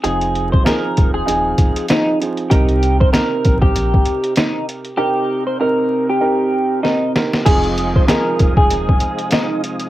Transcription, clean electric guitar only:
X:1
M:4/4
L:1/16
Q:"Swing 16ths" 1/4=97
K:Fm
V:1 name="Clean electric guitar"
A3 c B3 A4- A E2 z2 | G3 c B3 G4- G E2 z2 | G3 c B3 G4- G E2 z2 | A3 c B3 A4- A E2 z2 |]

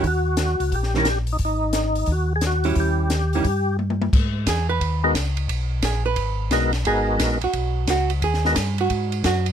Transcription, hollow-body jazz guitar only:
X:1
M:4/4
L:1/8
Q:"Swing" 1/4=176
K:G#m
V:1 name="Hollow-body jazz guitar"
z4 z [D,=G,CE] z2 | z6 z [=G,CE]- | [=G,CE]2 z [D,G,CE] z4 | z2 G B3 z2 |
z2 G B3 z2 | G3 F3 F z | G3 F3 F z |]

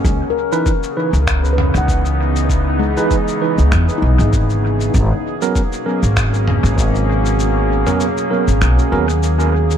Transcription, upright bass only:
X:1
M:4/4
L:1/16
Q:"Swing 16ths" 1/4=98
K:C#dor
V:1 name="Upright bass" clef=bass
C,, z6 C,,4 C,,4- C,,- | C,,3 z4 C,, E,, z B,,, G,,,4- G,,, | G,,, z6 G,,,4 G,,,4- G,,,- | G,,,3 z4 G,,, B,,, z D,,6 |]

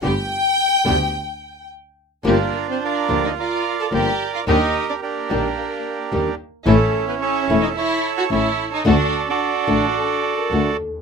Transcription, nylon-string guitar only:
X:1
M:4/4
L:1/8
Q:1/4=109
K:G
V:1 name="Nylon-string guitar"
[D,G,B,G] z2 [D,G,B,G] z4 | [K:Gm] [D,F,B,DG] z2 [D,F,B,DG] z2 [D,F,B,DG] z | [E,G,DG] z2 [E,G,DG] z2 [E,G,DG] z | [=E,A,^C=E] z2 [E,A,CE] z2 [E,A,CE] z |
[D,A,D^F] z2 [D,A,DF] z2 [D,A,DF] z |]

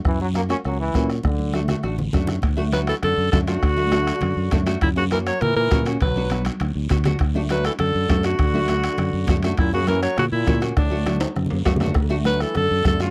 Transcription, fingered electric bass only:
X:1
M:4/4
L:1/8
Q:1/4=202
K:D
V:1 name="Fingered electric bass" clef=bass
F,,4 C,,2 ^A,,2 | D,,4 A,,,2 F,,2 | D,,4 F,, F,, F,,2 | D,,4 F,, F,, F,,2 |
F,,4 ^A,, A,, A,,2 | B,,,4 D,, D,, D,,2 | D,,4 F,, F,, F,,2 | D,,4 F,, F,, F,,2 |
F,,4 ^A,, A,, A,,2 | D,,4 F,, F,, F,,2 | D,,4 F,, F,, F,,2 |]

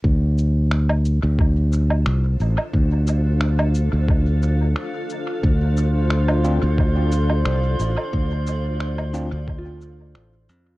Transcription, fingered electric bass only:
X:1
M:4/4
L:1/16
Q:"Swing 16ths" 1/4=89
K:Dm
V:1 name="Fingered electric bass" clef=bass
D,,6- D,, D,,4- D,, C,,2 A,,, z | D,,6- D,, D,,4- D,, z4 | D,,6- D,, D,,4- D,, C,,2 A,,, z | D,,6- D,, D,,4- D,, A,,,2 F,,2 |]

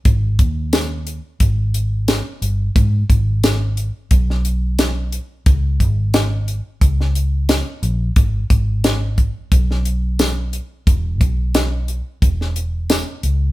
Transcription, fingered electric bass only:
X:1
M:4/4
L:1/8
Q:"Swing 16ths" 1/4=89
K:G#m
V:1 name="Fingered electric bass" clef=bass
G,,, D,,3 G,,,3 =G,,, | G,, G,,,3 B,,,4 | C,, G,,,3 C,,3 A,,, | G,,, G,,,3 B,,,4 |
E,,, B,,,3 E,,,3 C,, |]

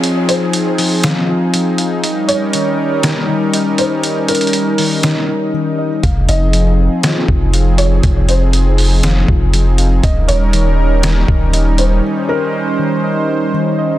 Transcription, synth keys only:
X:1
M:4/4
L:1/8
Q:1/4=120
K:Ebmix
V:1 name="Synth keys"
[F,Ff]3 F, f F F, f | e2 E,2 E E, e E- | E3 E, e E E, e | f2 F,2 F F, f F- |
F3 F, f F F, f | e2 E,2 E E, e E- | E3 E, e E E, e |]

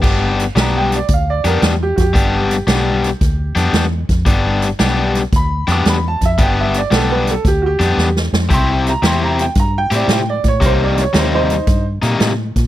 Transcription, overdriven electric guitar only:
X:1
M:4/4
L:1/8
Q:"Swing" 1/4=113
K:Gmix
V:1 name="Overdriven electric guitar"
[G,B,DG] z [G,B,DG] z2 [G,B,DG] z2 | [G,B,DG] z [G,B,DG] z2 [G,B,DG] z2 | [G,B,DG] z [G,B,DG] z2 [G,B,DG] z2 | [G,B,DG] z [G,B,DG] z2 [G,B,DG] z2 |
[C,CEG] z [C,CEG] z2 [C,CEG] z2 | [C,G,_B,_E] z [C,G,B,E] z2 [C,G,B,E] z2 |]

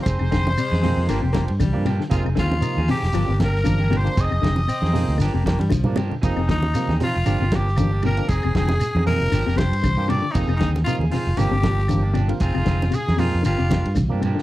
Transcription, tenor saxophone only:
X:1
M:4/4
L:1/8
Q:"Swing 16ths" 1/4=117
K:Fdor
V:1 name="Tenor saxophone"
c6 z2 | F F2 G2 B2 c | e4 z4 | E E2 F2 G2 B |
A A2 B2 c2 d | E E F F G3 z | F2 A F F2 z2 |]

